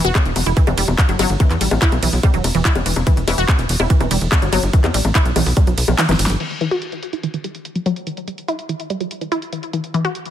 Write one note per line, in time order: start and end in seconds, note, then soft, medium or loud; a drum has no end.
0.05 0.12 E1 medium
0.05 0.09 F#4 loud
0.05 closed hi-hat medium
0.15 kick loud
0.15 clap loud
0.15 closed hi-hat medium
0.15 high bongo medium
0.25 0.33 E1 medium
0.25 closed hi-hat soft
0.36 0.43 E1 loud
0.36 open hi-hat loud
0.36 ride medium
0.36 high bongo soft
0.46 0.53 E1 medium
0.46 0.56 E4 medium
0.46 closed hi-hat medium
0.57 0.61 E3 medium
0.57 kick loud
0.57 closed hi-hat medium
0.67 0.74 E1 medium
0.67 0.74 E3 medium
0.67 closed hi-hat medium
0.67 high bongo medium
0.78 0.85 E1 loud
0.78 0.85 G3 medium
0.78 open hi-hat loud
0.78 ride medium
0.88 0.95 E1 medium
0.88 closed hi-hat medium
0.88 high bongo soft
0.98 kick loud
0.98 clap loud
0.98 closed hi-hat medium
1.09 1.16 G1 medium
1.09 1.18 F#3 medium
1.09 closed hi-hat medium
1.19 1.26 G1 loud
1.19 1.24 F#3 loud
1.19 open hi-hat loud
1.19 ride medium
1.19 high bongo medium
1.30 1.37 G1 medium
1.30 closed hi-hat medium
1.40 1.44 E3 medium
1.40 kick loud
1.40 closed hi-hat medium
1.40 high bongo soft
1.50 1.58 E2 medium
1.50 clap soft
1.50 closed hi-hat medium
1.61 1.68 A1 loud
1.61 1.68 G3 medium
1.61 open hi-hat loud
1.61 ride medium
1.71 1.78 A1 medium
1.71 closed hi-hat medium
1.71 high bongo medium
1.82 1.86 E4 loud
1.82 kick loud
1.82 clap loud
1.82 closed hi-hat medium
1.92 1.99 B1 medium
1.92 closed hi-hat medium
1.92 high bongo soft
2.03 2.10 B1 loud
2.03 2.10 E3 medium
2.03 open hi-hat loud
2.03 ride medium
2.13 2.20 B1 medium
2.13 open hi-hat medium
2.23 2.31 G3 medium
2.23 kick loud
2.23 closed hi-hat medium
2.23 high bongo medium
2.34 2.41 E1 medium
2.34 2.41 F#3 medium
2.34 closed hi-hat medium
2.44 2.51 E1 loud
2.44 open hi-hat loud
2.44 ride medium
2.44 high bongo soft
2.55 2.62 E1 loud
2.55 2.62 E3 medium
2.55 closed hi-hat medium
2.65 2.69 E4 loud
2.65 kick loud
2.65 clap loud
2.65 closed hi-hat medium
2.75 2.83 E1 medium
2.75 closed hi-hat medium
2.75 high bongo medium
2.86 2.93 E1 loud
2.86 2.93 E3 medium
2.86 open hi-hat loud
2.86 ride medium
2.96 3.03 E1 medium
2.96 closed hi-hat medium
2.96 high bongo soft
3.07 3.14 E3 medium
3.07 kick loud
3.07 closed hi-hat medium
3.17 3.24 E1 medium
3.17 closed hi-hat medium
3.28 3.35 E1 loud
3.28 3.35 E3 loud
3.28 open hi-hat loud
3.28 ride medium
3.28 high bongo medium
3.38 3.45 E1 medium
3.38 3.42 F#4 loud
3.38 closed hi-hat medium
3.48 kick loud
3.48 clap loud
3.48 closed hi-hat medium
3.48 high bongo soft
3.59 3.66 E1 medium
3.59 closed hi-hat medium
3.69 3.76 E1 loud
3.69 open hi-hat loud
3.69 ride medium
3.80 3.87 E1 loud
3.80 3.90 E4 medium
3.80 closed hi-hat medium
3.80 high bongo medium
3.90 3.94 E3 medium
3.90 kick loud
3.90 closed hi-hat medium
4.00 4.08 E1 medium
4.00 4.08 E3 medium
4.00 closed hi-hat medium
4.00 high bongo soft
4.11 4.18 E1 loud
4.11 4.18 G3 medium
4.11 open hi-hat loud
4.11 ride medium
4.21 4.28 E1 loud
4.21 closed hi-hat medium
4.32 kick loud
4.32 clap loud
4.32 closed hi-hat medium
4.32 high bongo medium
4.42 4.49 G1 medium
4.42 4.51 F#3 medium
4.42 closed hi-hat medium
4.53 4.60 G1 loud
4.53 4.57 F#3 loud
4.53 open hi-hat loud
4.53 ride medium
4.53 high bongo soft
4.63 4.70 G1 medium
4.63 closed hi-hat medium
4.73 4.78 E3 medium
4.73 kick loud
4.73 closed hi-hat medium
4.84 4.91 E2 medium
4.84 clap soft
4.84 closed hi-hat medium
4.84 high bongo medium
4.94 5.01 A1 loud
4.94 5.01 G3 medium
4.94 open hi-hat loud
4.94 ride medium
5.05 5.12 A1 medium
5.05 closed hi-hat medium
5.05 high bongo soft
5.15 5.19 E4 loud
5.15 kick loud
5.15 clap loud
5.15 closed hi-hat medium
5.25 5.33 B1 medium
5.25 closed hi-hat medium
5.36 5.43 B1 loud
5.36 5.43 E3 medium
5.36 open hi-hat loud
5.36 ride medium
5.36 high bongo medium
5.46 5.53 B1 loud
5.46 open hi-hat medium
5.57 5.64 G3 medium
5.57 kick loud
5.57 closed hi-hat medium
5.57 high bongo soft
5.67 5.74 B1 medium
5.67 5.74 F#3 medium
5.67 closed hi-hat medium
5.78 5.85 B1 loud
5.78 open hi-hat loud
5.78 ride medium
5.88 5.95 B1 loud
5.88 5.98 F#3 medium
5.88 high bongo medium
5.98 6.03 E3 loud
5.98 snare medium
5.98 clap loud
5.98 closed hi-hat medium
6.09 6.16 G1 medium
6.09 6.16 E3 loud
6.09 snare medium
6.09 closed hi-hat medium
6.09 high bongo soft
6.19 6.26 G1 loud
6.19 6.29 E3 medium
6.19 open hi-hat loud
6.19 ride medium
6.26 6.37 G1 medium
6.26 snare loud
6.26 closed hi-hat medium
6.40 6.47 E3 medium
6.40 closed hi-hat medium
6.40 crash medium
6.51 closed hi-hat medium
6.61 6.68 E3 loud
6.61 closed hi-hat medium
6.71 6.76 F#4 loud
6.71 closed hi-hat medium
6.82 closed hi-hat medium
6.92 closed hi-hat medium
7.03 closed hi-hat medium
7.13 7.23 E4 medium
7.13 closed hi-hat medium
7.23 7.28 E3 medium
7.23 closed hi-hat medium
7.34 7.41 E3 medium
7.34 closed hi-hat medium
7.44 7.51 G3 medium
7.44 closed hi-hat medium
7.55 closed hi-hat medium
7.65 closed hi-hat medium
7.75 7.85 F#3 medium
7.75 closed hi-hat medium
7.86 7.90 F#3 loud
7.86 closed hi-hat medium
7.96 closed hi-hat medium
8.07 8.11 E3 medium
8.07 closed hi-hat medium
8.17 closed hi-hat medium
8.28 8.35 G3 medium
8.28 closed hi-hat medium
8.38 closed hi-hat medium
8.48 8.53 E4 loud
8.48 closed hi-hat medium
8.59 closed hi-hat soft
8.69 8.76 E3 medium
8.69 closed hi-hat medium
8.80 closed hi-hat medium
8.90 8.97 G3 medium
8.90 closed hi-hat medium
9.00 9.08 F#3 medium
9.00 closed hi-hat medium
9.11 closed hi-hat medium
9.21 9.29 E3 medium
9.21 closed hi-hat medium
9.32 9.36 E4 loud
9.32 closed hi-hat medium
9.42 closed hi-hat medium
9.53 9.60 E3 medium
9.53 closed hi-hat medium
9.63 closed hi-hat medium
9.73 9.81 E3 medium
9.73 closed hi-hat medium
9.84 closed hi-hat soft
9.94 10.01 E3 loud
9.94 closed hi-hat medium
10.05 10.09 F#4 loud
10.05 closed hi-hat soft
10.15 closed hi-hat medium
10.25 closed hi-hat soft